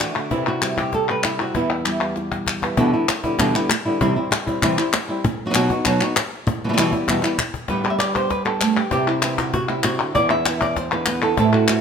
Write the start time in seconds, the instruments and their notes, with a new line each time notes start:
Already playing: nylon-string guitar F#4 D5
0.00 nylon-string guitar E3 A3 D4 F#4, cajon slap, clap
0.14 nylon-string guitar D3 A3 D4 F#4, clap
0.30 nylon-string guitar C3 E3 G3 C4 E4, cajon bass
0.46 nylon-string guitar G3 C4 E4 F#4, cajon slap
0.61 nylon-string guitar E3 G3 C4 E4, cajon slap, clap
0.76 nylon-string guitar G3 C4 E4 G4, cajon bass, clap
0.92 nylon-string guitar A4, muted nylon-string guitar stroke, cajon bass, cajon slap
1.11 nylon-string guitar B4
1.23 nylon-string guitar E4, cajon slap, clap
1.38 nylon-string guitar G3 C4 E4 F#4
1.54 nylon-string guitar E2 B2 E3 G3 B3 E4, cajon bass
1.70 nylon-string guitar E3 G3 B3 E4
1.85 nylon-string guitar E3 G3 B3 E4, cajon slap, clap
2.00 nylon-string guitar E3 G3 B3 E4
2.16 muted nylon-string guitar stroke, cajon slap
2.32 cajon bass, clap
2.46 cajon bass, clap
2.62 nylon-string guitar E3 G3 B3 E4, cajon bass
2.77 nylon-string guitar E2 B2 D3 G3 B3 E4, cajon bass
2.93 nylon-string guitar D3 G3 B3 E4
3.08 muted nylon-string guitar stroke, cajon slap, clap
3.24 nylon-string guitar D3 G3 B3 E4, cajon bass
3.39 nylon-string guitar E2 B2 D3 G3 B3 E4, cajon bass, cajon slap, clap
3.55 nylon-string guitar D3 G3 B3 E4, clap
3.69 muted nylon-string guitar stroke, cajon slap, clap
3.85 nylon-string guitar D3 G3 B3 E4
4.01 nylon-string guitar C3 E3 G3 C4 E4, cajon bass
4.16 nylon-string guitar G3 C4 E4
4.31 muted nylon-string guitar stroke, cajon slap, clap
4.47 nylon-string guitar G3 C4 E4, cajon bass
4.62 nylon-string guitar C3 E3 G3 C4 E4, cajon bass, clap
4.78 nylon-string guitar G3 C4 E4, clap
4.93 muted nylon-string guitar stroke, cajon slap, clap
5.09 nylon-string guitar G3 C4 E4, cajon slap
5.24 muted nylon-string guitar stroke, cajon bass
5.40 cajon slap
5.46 nylon-string guitar F#3 B3 D#4 F#4
5.50 nylon-string guitar F#3 B3 D#4 F#4
5.54 nylon-string guitar B2 F#3 B3 D#4 F#4, cajon slap, clap
5.70 nylon-string guitar B3 D#4 F#4, cajon bass
5.85 nylon-string guitar B2 F#3 B3 D#4 F#4, cajon bass, cajon slap, clap
6.01 nylon-string guitar B3 D#4 F#4, clap
6.16 muted nylon-string guitar stroke, cajon slap, clap
6.47 muted nylon-string guitar stroke, cajon bass
6.62 nylon-string guitar B2 E3 G3 B3 E4, cajon slap
6.69 nylon-string guitar B2 E3 G3 B3 E4
6.73 nylon-string guitar B2 E3 G3 B3 E4
6.78 nylon-string guitar E2 B2 E3 G3 B3 E4, cajon slap, clap
6.93 nylon-string guitar E3 G3 B3 E4, cajon bass
7.08 nylon-string guitar E2 B2 E3 G3 B3 E4, cajon bass, cajon slap, clap
7.22 nylon-string guitar E3 G3 B3 E4, cajon slap, clap
7.38 muted nylon-string guitar stroke, cajon bass, clap
7.54 cajon bass
7.68 nylon-string guitar G2 A2 D3 G3 B3 G4 B4, cajon bass, cajon slap
7.83 nylon-string guitar D3 G3 B3 G4 D5, clap
7.90 nylon-string guitar E5
7.98 nylon-string guitar D3 G3 B3 G4 D5, cajon slap, clap
8.14 nylon-string guitar D3 G3 B3 G4 C5, cajon bass, clap
8.30 nylon-string guitar B4, muted nylon-string guitar stroke, cajon bass, cajon slap
8.45 nylon-string guitar D3 G3 B3 G4 A4, clap
8.61 nylon-string guitar A3, cajon slap, clap
8.77 nylon-string guitar G4, clap
8.91 nylon-string guitar C3 E3 G3 C4 E4 G4, cajon bass
9.07 nylon-string guitar G3 C4 E4
9.22 nylon-string guitar E3 G3 C4 E4, cajon slap, clap
9.38 nylon-string guitar G3 C4 E4 F#4, cajon bass, clap
9.54 nylon-string guitar F#4, muted nylon-string guitar stroke, cajon bass
9.69 nylon-string guitar G3 C4 E4
9.83 nylon-string guitar C3 F#4, cajon slap, clap
9.99 nylon-string guitar D3, clap
10.14 nylon-string guitar E2 B2 D3 G#3 B3 E4 D5, cajon bass
10.30 nylon-string guitar D3 G#3 B3 E4 E5, cajon slap
10.46 nylon-string guitar D3 G#3 B3 E4, cajon slap, clap
10.61 nylon-string guitar D5, cajon bass, clap
10.76 nylon-string guitar C5, muted nylon-string guitar stroke, cajon bass, cajon slap
10.92 nylon-string guitar D3 G#3 B3 E4 B4
11.06 nylon-string guitar B3, cajon slap, clap
11.22 nylon-string guitar D3 G#3 B3 E4 A4, clap
11.37 nylon-string guitar A2 E3 G3 A3 C4 E4 A4, cajon bass
11.53 nylon-string guitar G3 C4 E4 F#4
11.67 nylon-string guitar E3 G3 C4 E4 F#4, cajon slap, clap